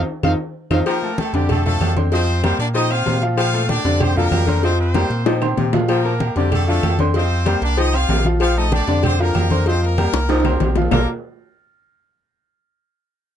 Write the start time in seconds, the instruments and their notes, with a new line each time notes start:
0.23 sub bass F2, upright piano C4 D#4 F4, trumpet F5, cowbell, high conga, high timbale, claves
0.70 sub bass F2, upright piano C4 D#4 F4, trumpet F5, cowbell, high conga, high timbale, claves
0.86 baritone saxophone F3, horn section A#3 A#4, cowbell, high conga, low agogo, claves
1.02 upright piano A3 A4 A5, high conga
1.18 horn section A3 A4, cowbell, high conga, low timbale, low agogo
1.33 sub bass F2, baritone saxophone C3, upright piano D3 D4 D5, horn section G3 G4, cowbell, high conga
1.49 horn section A3 A4, cowbell, high conga, low conga, low agogo, claves
1.66 baritone saxophone D3, upright piano F3 F4 F5, horn section A3 A4, high conga, low conga, low agogo
1.80 sub bass F2, cowbell, high conga, low timbale, low agogo, claves
1.97 baritone saxophone D3, upright piano C4 C5 C6, cowbell, high conga
2.12 upright piano F3 F4 D#5, horn section C4 C5, cowbell, high conga, low agogo
2.28 high conga
2.43 baritone saxophone G3, upright piano A#3 A#4 A#5, horn section C4 C5, cowbell, high conga, low timbale, low agogo, claves
2.59 sub bass A#2, horn section D4 D5, cowbell, high conga
2.74 baritone saxophone F3, upright piano D#4 D#5 D#6, horn section D#4 D#5, cowbell, high conga, low agogo
2.91 upright piano C4 C5 C6, horn section F4 F5, high conga, low agogo, claves
3.06 sub bass A#2, baritone saxophone C3, cowbell, high conga, low timbale, low agogo
3.22 upright piano F3 F4 F5, cowbell
3.37 baritone saxophone F3, horn section F4 F5, cowbell, high conga, low agogo, claves
3.53 upright piano A3 A4 A5, high conga
3.69 horn section D4 D5, cowbell, high conga, low timbale, low agogo
3.85 sub bass F2, baritone saxophone C3, upright piano D3 D4 D5, cowbell, high conga
4.00 horn section C4 C5, cowbell, high conga, low conga, low agogo, claves
4.16 baritone saxophone D3, upright piano F3 F4 F5, horn section A#3 A#4, high conga, low conga, low agogo
4.31 sub bass F2, cowbell, high conga, low timbale, low agogo, claves
4.47 baritone saxophone D3, upright piano C4 C5 C6, cowbell, high conga
4.63 upright piano F3 F4 D#5, horn section C4 C5, cowbell, low agogo
4.79 horn section C4 C5, high conga
4.94 baritone saxophone G3, upright piano A#3 A#4 A#5, cowbell, high bongo, high conga, low timbale, low agogo, claves
5.10 sub bass A#2, cowbell, high conga
5.26 baritone saxophone F3, upright piano D#4 D#5 D#6, cowbell, high bongo, high conga, high timbale, low agogo
5.42 upright piano C4 C5 C6, low bongo, high conga, high timbale, low agogo, claves
5.57 sub bass A#2, baritone saxophone C3, cowbell, low bongo, high conga, low agogo
5.73 upright piano F3 F4 F5, cowbell, low bongo, high conga, low timbale
5.89 baritone saxophone F3, horn section A#3 A#4, cowbell, high conga, low agogo, claves
6.05 upright piano A#3 A#4 A5, high conga
6.20 cowbell, high conga, low timbale, low agogo
6.36 sub bass F2, baritone saxophone C3, upright piano D3 D4 D5, horn section G3 G4, cowbell, high conga
6.52 horn section A3 A4, cowbell, high conga, low conga, low agogo, claves
6.68 baritone saxophone D3, upright piano F3 F4 F5, horn section A3 A4, high conga, low agogo
6.83 sub bass F2, cowbell, high conga, low timbale, low agogo, claves
6.99 baritone saxophone D3, upright piano C4 C5 C6, cowbell, high conga
7.14 upright piano F3 F4 D#5, horn section C4 C5, cowbell, high conga, low agogo
7.31 high conga
7.46 baritone saxophone G3, upright piano A#3 A#4 A#5, cowbell, high conga, low timbale, low agogo, claves
7.61 sub bass C2, horn section D4 D5, cowbell, high conga
7.77 baritone saxophone F3, upright piano D#4 D#5 D#6, horn section D#4 D#5, cowbell, high conga, low agogo
7.93 upright piano C4 C5 C6, horn section F4 F5, high conga, low agogo, claves
8.08 sub bass A#1, baritone saxophone C3, cowbell, high conga, low timbale, low agogo
8.25 upright piano F3 F4 F5, cowbell, high conga
8.40 baritone saxophone F3, horn section F4 F5, cowbell, low agogo, claves
8.57 upright piano A3 A4 A5, horn section D#4 D#5, high conga
8.72 horn section D4 D5, cowbell, high conga, low timbale, low agogo
8.87 sub bass F2, baritone saxophone C3, upright piano D3 D4 D5, cowbell, high conga
9.03 horn section C4 C5, cowbell, high conga, low conga, low agogo, claves
9.19 baritone saxophone D3, upright piano F3 F4 F5, horn section A#3 A#4, high conga, low agogo
9.35 sub bass F2, cowbell, high conga, low timbale, low agogo, claves
9.50 baritone saxophone D3, upright piano C4 C5 C6, cowbell, high conga
9.66 upright piano F3 F4 D#5, horn section C4 C5, cowbell, high conga, low agogo
9.82 horn section A#3 A#4, high conga
9.98 baritone saxophone G3, upright piano A#3 A#4 A#5, cowbell, high conga, low timbale, low agogo, claves
10.13 sub bass C2, cowbell, high bongo
10.29 baritone saxophone F3, upright piano D#4 D#5 D#6, cowbell, high bongo, high conga, high timbale, low agogo
10.40 high timbale
10.45 upright piano C4 C5 C6, low bongo, high conga, low agogo, claves
10.50 low timbale
10.60 sub bass A#1, baritone saxophone C3, cowbell, low bongo, high conga, low timbale, low agogo
10.75 upright piano F3 F4 F5, cowbell, low bongo, high conga
10.82 low timbale
10.91 sub bass A#1, baritone saxophone A#2, upright piano A#3 F4 A4 A#4 D5 F5, horn section A#4, low bongo, low conga, low timbale, claves